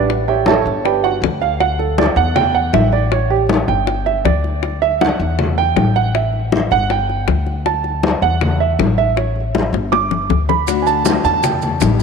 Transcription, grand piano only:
0.28 0.47 G4 medium
0.28 0.46 C#5 medium
0.28 0.46 E5 medium
0.28 0.46 G5 medium
0.48 0.83 A4 medium
0.48 0.82 C#5 medium
0.48 0.83 E5 medium
0.48 0.82 A5 medium
0.85 1.03 G4 medium
0.85 1.03 B4 medium
0.85 1.03 D5 medium
0.85 1.03 G5 medium
1.04 1.15 F#4 medium
1.04 1.15 F#5 medium
1.42 1.60 F5 medium
1.60 1.79 F#5 medium
1.79 1.97 A4 medium
1.98 2.16 D5 medium
2.17 2.35 F#5 loud
2.36 2.54 G5 loud
2.55 2.73 F#5 medium
2.74 2.92 E5 medium
2.93 3.11 D5 medium
3.12 3.30 C#5 medium
3.30 3.42 G4 medium
3.68 4.03 G5 medium
4.06 4.24 E5 medium
4.25 4.78 D5 medium
4.82 5.00 E5 loud
5.01 5.36 F#5 medium
5.58 5.93 G5 loud
5.96 6.14 F#5 medium
6.15 6.68 E5 medium
6.72 6.90 F#5 loud
6.91 7.26 G5 medium
7.66 8.19 A5 medium
8.22 8.58 F#5 medium
8.60 8.95 E5 medium
8.98 9.16 E5 medium
9.16 9.35 C#5 medium
9.92 10.45 D6 medium
10.49 10.84 B5 medium
10.82 10.85 G#5 medium
10.87 11.22 A5 medium
11.25 11.43 A5 loud
11.43 11.62 G5 medium

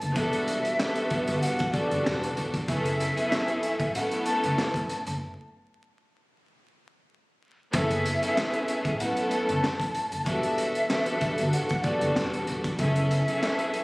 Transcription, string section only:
0.14 0.73 E2 loud
0.14 0.74 G3 medium
0.14 0.74 B3 loud
0.14 0.74 D4 medium
0.14 0.74 F#4 loud
0.14 0.75 A4 loud
0.78 1.66 E2 loud
0.78 1.67 G3 loud
0.78 1.67 B3 loud
0.78 1.67 D4 medium
0.78 1.67 F#4 medium
0.78 1.68 A4 loud
1.72 2.61 E2 loud
1.72 2.61 G3 loud
1.72 2.61 B3 medium
1.72 2.61 D4 loud
1.72 2.62 F#4 loud
1.72 2.62 A4 loud
2.67 3.13 F#2 loud
2.67 3.13 B3 medium
2.67 3.13 C#4 medium
2.67 3.14 E4 medium
2.67 3.13 G#4 medium
2.67 3.14 A4 loud
3.14 3.87 F#2 loud
3.14 3.88 B3 medium
3.14 3.88 C#4 medium
3.14 3.88 E4 medium
3.14 3.88 G#4 medium
3.14 3.89 A4 loud
3.94 4.96 F#2 loud
3.94 4.97 A3 medium
3.94 4.97 B3 loud
3.94 4.97 C#4 loud
3.94 4.98 E4 medium
3.94 4.98 A4 loud
7.73 8.18 F#2 loud
7.73 8.18 B3 medium
7.73 8.19 C#4 medium
7.73 8.19 E4 medium
7.73 8.18 G#4 medium
7.73 8.19 A4 loud
8.20 8.93 F#2 medium
8.20 8.93 B3 medium
8.20 8.94 C#4 medium
8.20 8.94 E4 medium
8.20 8.93 G#4 medium
8.20 8.94 A4 loud
8.99 10.02 F#2 loud
8.99 10.02 A3 medium
8.99 10.02 B3 loud
8.99 10.02 C#4 loud
8.99 10.03 E4 medium
8.99 10.03 A4 loud
10.25 10.84 E2 loud
10.25 10.84 G3 medium
10.25 10.85 B3 medium
10.25 10.85 D4 medium
10.25 10.85 F#4 loud
10.25 10.85 A4 loud
10.89 11.77 E2 medium
10.89 11.77 G3 medium
10.89 11.77 B3 loud
10.89 11.78 D4 medium
10.89 11.78 F#4 medium
10.89 11.78 A4 loud
11.82 12.71 E2 loud
11.82 12.71 G3 loud
11.82 12.72 B3 medium
11.82 12.72 D4 loud
11.82 12.72 F#4 loud
11.82 12.72 A4 loud
12.78 13.23 F#2 loud
12.78 13.24 B3 medium
12.78 13.24 C#4 loud
12.78 13.24 E4 medium
12.78 13.23 G#4 medium
12.78 13.24 A4 loud
13.25 13.84 F#2 loud
13.25 13.84 B3 medium
13.25 13.84 C#4 medium
13.25 13.84 E4 medium
13.25 13.84 G#4 loud
13.25 13.84 A4 loud

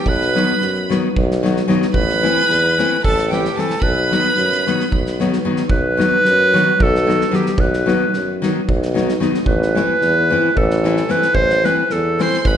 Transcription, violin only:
0.07 0.91 B5 medium
1.94 3.00 B5 medium
3.04 3.29 A5 medium
3.30 3.57 G5 medium
3.56 3.82 A5 medium
3.80 5.20 B5 medium
12.21 12.39 C6 medium
12.39 12.49 C6 medium
12.47 12.57 B5 medium

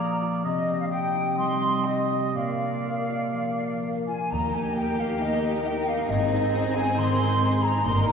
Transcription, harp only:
0.00 0.47 A#2 soft
0.00 0.47 F3 soft
0.00 0.47 A#3 soft
0.00 0.47 D4 soft
0.00 0.20 F4 soft
0.00 0.47 G#4 soft
0.00 0.47 A#4 soft
0.22 0.47 F4 soft
0.45 2.37 C3 soft
0.68 1.60 C4 soft
0.91 1.85 G4 soft
1.15 2.09 D#4 soft
1.38 2.37 G3 soft
1.62 2.37 C4 soft
1.86 2.37 G4 soft
2.10 2.37 D#4 soft
2.35 4.34 A#2 soft
2.61 3.57 D4 soft
2.85 3.82 A#4 soft
3.09 4.07 F4 soft
3.33 4.34 F3 soft
3.58 4.34 D4 soft
3.83 4.76 A#4 soft
4.08 4.34 F4 soft
4.32 6.12 D#3 soft
4.55 5.43 D#4 soft
4.77 5.64 A#4 soft
4.99 5.87 G4 soft
5.21 6.12 A#3 soft
5.44 6.31 D#4 soft
5.66 6.12 A#4 soft
5.88 6.12 G4 soft
6.10 7.87 G#2 soft
6.32 7.18 D#4 soft
6.54 7.40 C5 soft
6.76 7.62 G#4 soft
6.98 7.87 D#3 soft
7.19 8.06 D#4 soft
7.41 7.87 C5 soft
7.63 7.87 G#4 soft
7.84 8.12 G2 soft
8.07 8.12 D#4 soft

